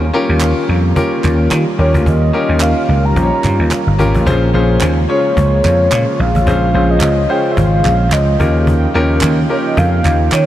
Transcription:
Already playing: D#3 G3 A#3 C#4 F4
0.13 C#4 F4 G4 A#4, cajon slap
0.29 D#2
0.40 cajon slap, clap
0.69 F2, cajon slap
0.96 C#4 F4 G4 A#4, cajon bass
1.24 D#2, cajon bass, clap
1.51 D#3, cajon slap, clap
1.78 D#2 C#4 F4 G4 A#4 C#5
1.94 D2, cajon bass
2.06 D#2 D#5, cajon bass
2.33 C#4 F4 G4 A#4, cajon slap
2.49 D#2
2.60 F5, cajon slap, clap
2.89 C#2
3.05 A#5
3.16 A#1 C#4 F4 G4 C5, cajon bass
3.23 C#5
3.44 G2, cajon bass, clap
3.59 D#2
3.71 cajon slap, clap
3.87 G1
3.98 G#1 C#4 F4 G4 A#4, cajon bass
4.15 A1, cajon bass
4.26 A#1 C#3 F3 G#3 A#3 C#4 F4 G#4 C5, cajon bass
4.54 A#1 C#4 F4 G#4 C5, cajon slap
4.81 D#2, cajon slap, clap
5.09 C#4 F4 G#4 C#5, cajon slap
5.37 C#2, cajon bass
5.64 F2, cajon bass, clap
5.92 A#2, cajon slap, clap
6.20 A#1 F5
6.35 A1, cajon bass
6.46 A#1 C#4 F4 G#4 C5, cajon bass
6.74 A#1 C#4 F4 G#4 C5, cajon slap
6.90 D#5
7.01 C#2, cajon slap, clap
7.29 C#4 F4 G#4 C5 G5, cajon slap
7.52 E5
7.57 G#1 F5, cajon bass
7.85 A#1, cajon bass, clap
8.12 C#2 D#5, cajon slap, clap
8.39 D#2 F3 A#3 C#4 D#4 F4 G4 A#4 G5, cajon bass
8.67 cajon bass
8.94 D#2 C#4 F4 G4 A#4, cajon slap
9.21 D#2, cajon slap, clap
9.49 C#4 F4 G4 A#4 C#5, cajon slap
9.66 D#5
9.77 F2 F5, cajon bass
10.05 D#2, cajon bass, clap
10.32 D#3 C#5, cajon slap, clap

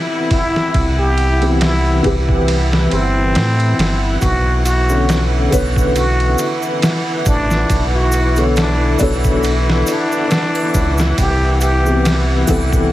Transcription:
Already playing: E3 B3 C4 E4 A4 F#5
0.31 E4, kick, ride
0.56 snare
0.74 C2, kick, ride
0.98 G4
1.18 ride
1.41 E3 B3 C4 G4, ride
1.61 E4, snare, ride
2.03 C2 E3 C4 G4 B4, kick, ride
2.29 kick
2.48 ride
2.73 snare
2.91 G1 C4, ride
3.35 A2, snare, ride
3.60 ride
3.78 G1, snare, ride
4.21 B1 E3 F#4, kick, ride, shaker
4.65 F#4, ride, shaker
4.89 D3 B3 C#4 A4, shaker
5.09 snare, ride, shaker
5.51 B1 D3 B3 B4 C#5, kick, ride, triangle, shaker
5.76 kick, shaker
5.96 F#4, ride, shaker
6.20 ride
6.38 ride, shaker
6.62 shaker
6.82 snare, ride, shaker
7.26 A1 D4, kick, ride, shaker
7.51 snare, shaker
7.70 B1, kick, ride, shaker
7.95 F#4
8.12 ride, shaker
8.36 D3 B3 A4 C#5, ride, shaker
8.56 D4, snare, ride, shaker
8.99 B1 B3 D4 A4 C#5, kick, ride, triangle, shaker
9.24 kick, shaker
9.43 ride, shaker
9.70 snare
9.87 D4, ride, shaker
10.12 shaker
10.31 snare, ride, shaker
10.55 ride, triangle
10.74 C#2, kick, ride, shaker
10.98 snare, shaker
11.18 C2 G4, kick, ride, shaker
11.61 G4, ride, shaker
11.85 E3 B3 C4 G4, shaker
12.05 snare, ride, shaker
12.47 C2 E3 B3 C4 A4, kick, ride, triangle, shaker
12.73 kick, shaker

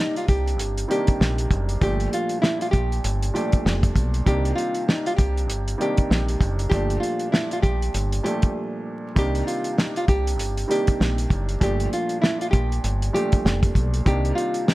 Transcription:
Already playing: C3 D#3 G3 A#3 D4 D#4
0.00 snare
0.16 F4, closed hi-hat
0.28 C2 G4, kick, closed hi-hat
0.47 closed hi-hat
0.59 G1, closed hi-hat
0.78 closed hi-hat
0.88 C3 D#3 G3 A#3 D4 G4, closed hi-hat
1.07 kick, closed hi-hat
1.20 A#1, snare
1.38 closed hi-hat
1.51 F#1, kick, closed hi-hat
1.69 closed hi-hat
1.81 G1 A#2 F3 G3 A3 D4 G4, kick, closed hi-hat
2.00 closed hi-hat
2.13 F4, closed hi-hat
2.29 closed hi-hat
2.42 E4, snare
2.61 F4, closed hi-hat
2.71 A#1 G4, kick, closed hi-hat
2.92 closed hi-hat
3.04 G1, closed hi-hat
3.22 closed hi-hat
3.34 A#2 F3 G3 A3 D4 G4, closed hi-hat
3.52 kick, closed hi-hat
3.65 F1, snare
3.83 kick, closed hi-hat
3.96 B1, kick, closed hi-hat
4.14 closed hi-hat
4.26 C2 C3 D#3 G3 A#3 D4 G4, kick, closed hi-hat
4.45 closed hi-hat
4.56 F4, closed hi-hat
4.75 closed hi-hat
4.88 D#4, snare
5.06 F4, closed hi-hat
5.16 C2 G4, kick, closed hi-hat
5.37 closed hi-hat
5.49 G1, closed hi-hat
5.68 closed hi-hat
5.78 C3 D#3 G3 A#3 D4, closed hi-hat
5.82 G4
5.97 kick, closed hi-hat
6.10 A#1, snare
6.28 closed hi-hat
6.41 F#1, kick, closed hi-hat
6.59 closed hi-hat
6.70 G1 A#2 F3 G3 A3 D4 G4, kick, closed hi-hat
6.90 closed hi-hat
7.00 F4, closed hi-hat
7.19 closed hi-hat
7.32 E4, snare
7.51 F4, closed hi-hat
7.62 A#1 G4, kick, closed hi-hat
7.82 closed hi-hat
7.94 G1, closed hi-hat
8.12 closed hi-hat
8.23 A#2 F3 G3 A3 D4 G4, closed hi-hat
8.42 kick, closed hi-hat
9.15 C2 C3 D#3 G3 A#3 D4 G4, kick, closed hi-hat
9.35 closed hi-hat
9.47 F4, closed hi-hat
9.64 closed hi-hat
9.78 D#4, snare
9.96 F4, closed hi-hat
10.08 C2 G4, kick, closed hi-hat
10.27 closed hi-hat
10.39 G1, closed hi-hat
10.57 closed hi-hat
10.68 C3 D#3 G3 A#3 D4 G4, closed hi-hat
10.87 kick, closed hi-hat
11.00 A#1, snare
11.18 closed hi-hat
11.30 F#1, kick, closed hi-hat
11.49 closed hi-hat
11.60 G1 A#2 F3 G3 A3 D4 G4, kick, closed hi-hat
11.80 closed hi-hat
11.93 F4, closed hi-hat
12.09 closed hi-hat
12.22 E4, snare
12.41 F4, closed hi-hat
12.51 A#1 G4, kick, closed hi-hat
12.72 closed hi-hat
12.84 G1, closed hi-hat
13.02 closed hi-hat
13.13 A#2 F3 G3 A3 D4 G4, closed hi-hat
13.32 kick, closed hi-hat
13.45 F1, snare
13.63 kick, closed hi-hat
13.75 B1, kick, closed hi-hat
13.94 closed hi-hat
14.05 C2 C3 D#3 G3 A#3 D4 G4, kick, closed hi-hat
14.25 closed hi-hat
14.35 F4, closed hi-hat
14.54 closed hi-hat
14.68 D#4, snare

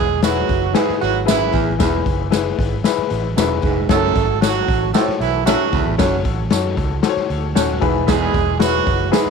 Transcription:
Already playing: E1 E3 G#3 G#4
0.22 F#3 E4 F#4 G#4 B4, snare, closed hi-hat, tambourine
0.49 F#1, kick, closed hi-hat
0.73 G#2 G#3 E4 G#4 B4, snare, closed hi-hat, tambourine
0.89 muted fingered electric bass stroke, snare
1.01 G#1 F#3 F#4, closed hi-hat
1.25 F#2 E3 E4 G#4 B4, snare, closed hi-hat, tambourine
1.52 A1 E2 E3, kick, closed hi-hat
1.79 E1 E2 E4 G#4 B4, kick, snare, closed hi-hat, tambourine
2.06 F#1, kick, closed hi-hat
2.31 E4 G#4 B4, snare, closed hi-hat, tambourine
2.59 G#1, kick, closed hi-hat
2.84 E4 G#4 B4, snare, closed hi-hat, tambourine
2.98 muted fingered electric bass stroke
3.10 A1, closed hi-hat
3.36 E1 F#2 E4 G#4 B4, snare, closed hi-hat, tambourine
3.62 F1 G#2, kick, closed hi-hat
3.88 F#1 F#2 A3 F#4 A4 C#5, kick, snare, closed hi-hat, tambourine
4.15 G#1, kick, closed hi-hat
4.41 F#3 F#4 A4 C#5, snare, closed hi-hat, tambourine
4.68 A1, kick, closed hi-hat
4.93 A2 A3 F#4 A4 C5, snare, closed hi-hat, tambourine
5.01 C#5
5.08 muted fingered electric bass stroke, snare
5.20 B1 E3 E4, closed hi-hat
5.45 F#2 F#3 F#4 A4 E5, snare, closed hi-hat, tambourine
5.73 C#2 E2, kick, closed hi-hat
5.86 A1
5.98 F#1 F#2 F#4 A4 C#5, kick, snare, closed hi-hat, tambourine
6.25 A1, kick, closed hi-hat
6.50 F#2 F#4 A4 C#5, snare, closed hi-hat, tambourine
6.77 C#2, kick, closed hi-hat
7.02 F#4 A4 C5, snare, closed hi-hat, tambourine
7.09 C#5
7.16 muted fingered electric bass stroke, snare
7.30 D2, closed hi-hat
7.55 D#1 F#2 F#4 A4 C#5, snare, closed hi-hat, tambourine
7.80 E1 G#2 E3 E4 G#4 B4, kick, closed hi-hat
8.06 E2 G#3 G#4, kick, snare, closed hi-hat, tambourine
8.34 E1, kick, closed hi-hat
8.59 F#3 E4 F#4 G#4 B4, snare, closed hi-hat, tambourine
8.87 F#1, kick, closed hi-hat
9.11 G#2 G#3 E4 G#4 B4, snare, closed hi-hat, tambourine
9.26 muted fingered electric bass stroke, snare

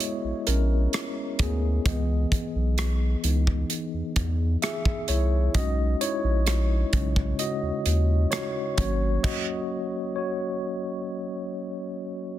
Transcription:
Already playing: G#3 B3 E4 F#4 G#4 C#5 D#5 E5
0.00 closed hi-hat
0.24 A#1
0.47 A#1 C#4 A#4, closed hi-hat
0.93 cross-stick, closed hi-hat
1.39 D2 B3 G#4, kick, closed hi-hat
1.86 C#2 E3 B3 D#5, kick, closed hi-hat
2.32 kick, closed hi-hat
2.55 B1
2.78 cross-stick, closed hi-hat
3.24 C#2 E3 B3 D#4, closed hi-hat
3.47 kick
3.70 closed hi-hat
3.94 E2
4.16 E2, kick, closed hi-hat
4.62 G#4 E5, cross-stick, closed hi-hat
4.85 kick
5.08 C2 E4 C#5, closed hi-hat
5.54 B1 G#3 C#4 D#4 F#4 D#5, kick, closed hi-hat
6.01 E4 C#5, closed hi-hat
6.24 A#1
6.47 cross-stick, closed hi-hat
6.93 B1 C#3 G#3 C#4, kick, closed hi-hat
7.16 kick
7.39 F#4 D#5, closed hi-hat
7.63 D#2
7.86 D#2, closed hi-hat
8.31 F#4 C#5, cross-stick, closed hi-hat
8.77 G#1 F#3 A#3 C#4 F#4 C#5, kick, closed hi-hat
9.23 F#4 D#5, kick, crash
10.16 F#4 C#5

